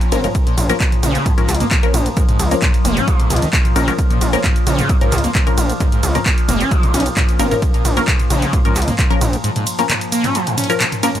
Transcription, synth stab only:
0.12 F3 C#4 A#4
0.24 F3 C#4 A#4
0.69 F3 C#4 A#4
1.38 F3 C#4 A#4
1.83 F3 C#4 A#4
2.51 F3 C#4 A#4
3.76 F3 C#4 A#4
3.88 F3 C#4 A#4
4.33 F3 C#4 A#4
5.01 F3 C#4 A#4
5.47 F3 C#4 A#4
6.15 F3 C#4 A#4
7.39 F3 C#4 A#4
7.51 F3 C#4 A#4
7.97 F3 C#4 A#4
8.65 F3 C#4 A#4
9.10 F3 C#4 A#4
9.79 F3 C#4 A#4
10.70 F3 C#4 A#4
11.03 F3 C#4 A#4

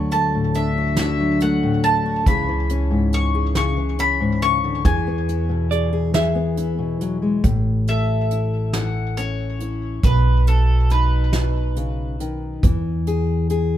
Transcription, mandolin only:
0.12 A5
0.55 E5
0.99 E5
1.42 F#5
1.84 A5
2.28 B5
3.14 C#6
3.57 C#6
4.00 B5
4.42 C#6
4.85 G#5
7.89 E5
8.74 F#5
9.17 C#5
10.04 B4
10.48 A4
10.91 B4

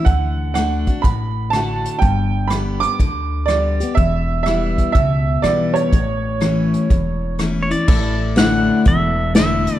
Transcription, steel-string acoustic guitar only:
0.06 D3
0.55 D3 A3 D4 F#4
0.87 D4 F#4
1.05 A2
1.53 D3 A3 D4 F#4
2.02 G2
2.50 D3 G3 B3 G4
2.83 B3 G4
3.00 D3
3.48 D3 G3 B3 G4
3.80 B3 G4
3.97 E2
4.46 E3 G3 B3 E4
4.95 B2
5.44 E3 G3 B3 E4
5.93 A2
6.41 E3 A3 C#4 E4
6.91 E2
7.39 E3 A3 C#4 E4
7.71 C#4 E4
7.88 A2
8.36 D3 A3 D4 E4
8.85 E2
9.35 D3 A3 D4 E4

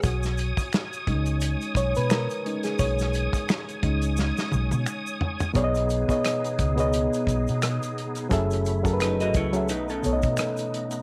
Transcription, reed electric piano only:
0.04 F#4
1.07 G#3 C#4 D#4
1.77 C#5
1.97 B4
2.11 A#4
2.45 G#3 C#4 D#4
2.64 G#4
2.79 C#5
3.83 G#3 C#4 D#4
5.54 B2 B3 G#4 C#5 D5
5.64 D#5
6.08 B2 B3 G#4 C#5 D#5
6.76 B2 B3 G#4 C#5 D#5
8.29 F#3 C#4 G#4 A4 E5
8.83 F#3 C#4 G#4 A4 A#4
8.93 B4
9.53 F#3 C#4 G#4 A4 E5
10.03 B2 B3 C#4 A4 C#5
10.13 D#5

